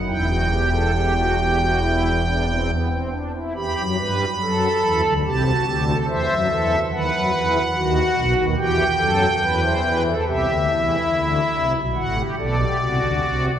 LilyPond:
<<
  \new Staff \with { instrumentName = "Pipe organ" } { \time 4/4 \key e \minor \tempo 4 = 71 << { g''2.~ g''8 r8 | b''2 a''4 e''4 | fis''2 g''2 | e''2 fis''8 d''4. | } \\ { e'16 fis'16 g'16 a'16 g'16 fis'16 g'16 fis'16 e'8 d'16 c'16 b16 c'16 d'16 e'16 | g'8 b'8 a'4 g'16 fis'16 g'16 a'16 c''8 a'8 | b'4 fis'4 g'8 a'8 b'16 c''16 b'16 a'16 | g'8 e'4. fis'16 g'16 a'16 g'16 fis'4 | } >> }
  \new Staff \with { instrumentName = "Pipe organ" } { \clef bass \time 4/4 \key e \minor <e,, e,>2.~ <e,, e,>8 r8 | <e, e>16 <fis, fis>16 <g, g>8 <fis, fis>8 <e, e>16 <d, d>16 <c, c>8 <d, d>8 <e, e>16 <fis, fis>16 <e, e>8 | <dis, dis>16 <fis, fis>16 <e, e>8 <dis, dis>8 <b,, b,>16 <dis, dis>16 <e, e>8 <fis, fis>8 <e, e>4 | <c, c>16 <d, d>16 <e, e>8 <d, d>8 <c, c>16 <b,, b,>16 <a,, a,>8 <b,, b,>8 <c, c>16 <d, d>16 <c, c>8 | }
>>